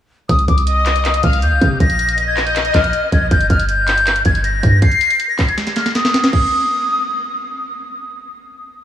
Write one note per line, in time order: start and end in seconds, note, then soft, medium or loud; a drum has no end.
0.29 0.47 C2 loud
0.29 0.45 D#6 loud
0.29 kick loud
0.29 closed hi-hat medium
0.39 closed hi-hat medium
0.48 1.21 C2 loud
0.48 0.64 D6 medium
0.48 kick loud
0.48 closed hi-hat medium
0.58 closed hi-hat medium
0.67 1.20 D#5 medium
0.67 1.20 D#6 medium
0.67 closed hi-hat medium
0.86 clap loud
0.86 closed hi-hat medium
0.96 closed hi-hat soft
1.05 clap loud
1.05 closed hi-hat medium
1.14 closed hi-hat medium
1.23 1.44 C2 loud
1.23 1.42 F5 medium
1.23 1.39 F6 medium
1.23 kick medium
1.23 closed hi-hat medium
1.33 closed hi-hat medium
1.42 1.53 D#2 loud
1.42 1.78 G6 medium
1.42 closed hi-hat medium
1.52 1.61 C2 loud
1.61 1.80 C3 loud
1.61 kick medium
1.61 closed hi-hat medium
1.80 2.71 A#1 loud
1.80 2.25 A#6 loud
1.80 kick loud
1.80 closed hi-hat medium
1.90 closed hi-hat medium
1.99 closed hi-hat medium
2.09 closed hi-hat medium
2.18 3.27 D#5 loud
2.18 closed hi-hat medium
2.27 2.43 G#6 medium
2.37 clap loud
2.37 open hi-hat medium
2.46 2.54 G6 medium
2.46 closed hi-hat soft
2.56 clap loud
2.56 closed hi-hat medium
2.65 closed hi-hat medium
2.74 2.93 A#1 loud
2.74 3.10 F6 medium
2.74 kick medium
2.74 clap loud
2.74 closed hi-hat medium
2.84 closed hi-hat medium
2.93 closed hi-hat medium
3.12 3.31 A#1 loud
3.12 3.28 G#6 medium
3.12 kick medium
3.12 closed hi-hat medium
3.31 3.49 G1 loud
3.31 3.47 G6 loud
3.31 kick loud
3.31 closed hi-hat medium
3.41 closed hi-hat medium
3.50 4.23 G1 loud
3.50 3.66 F6 medium
3.50 kick loud
3.50 closed hi-hat medium
3.59 closed hi-hat medium
3.69 4.22 G6 loud
3.69 closed hi-hat medium
3.88 clap loud
3.88 closed hi-hat medium
3.98 closed hi-hat medium
4.07 clap loud
4.07 closed hi-hat medium
4.16 closed hi-hat medium
4.25 4.62 G1 loud
4.25 4.41 G#6 medium
4.25 kick medium
4.25 closed hi-hat medium
4.35 closed hi-hat medium
4.44 4.80 A#6 medium
4.44 closed hi-hat medium
4.63 4.81 G2 loud
4.63 kick medium
4.63 closed hi-hat medium
4.82 5.27 C7 loud
4.82 kick loud
4.82 closed hi-hat medium
4.92 closed hi-hat medium
5.01 closed hi-hat medium
5.10 closed hi-hat medium
5.20 closed hi-hat medium
5.29 5.45 A#6 medium
5.38 kick loud
5.38 clap loud
5.38 open hi-hat medium
5.48 5.56 G#6 medium
5.48 closed hi-hat soft
5.58 snare medium
5.58 closed hi-hat medium
5.67 snare medium
5.67 closed hi-hat medium
5.76 5.92 F6 medium
5.76 snare medium
5.76 closed hi-hat medium
5.86 snare medium
5.86 closed hi-hat medium
5.95 6.31 D#6 medium
5.95 snare medium
5.95 closed hi-hat medium
6.05 snare medium
6.14 snare loud
6.14 closed hi-hat medium
6.24 snare loud
6.24 closed hi-hat soft
6.33 7.42 D#6 loud
6.33 kick loud
6.33 crash medium